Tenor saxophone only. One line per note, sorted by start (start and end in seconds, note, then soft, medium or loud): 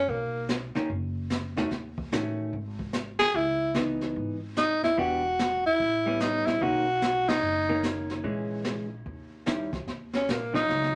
0.00 0.11 C#4 medium
0.10 0.50 A#3 medium
3.19 3.37 G#4 loud
3.36 3.76 E4 medium
4.58 4.82 D#4 medium
4.84 5.00 E4 medium
4.99 5.65 F#4 medium
5.66 6.23 E4 medium
6.22 6.48 D#4 medium
6.46 6.64 E4 medium
6.62 7.30 F#4 medium
7.29 7.84 D#4 medium
10.15 10.33 C#4 medium
10.31 10.55 A#3 medium
10.55 10.95 D#4 medium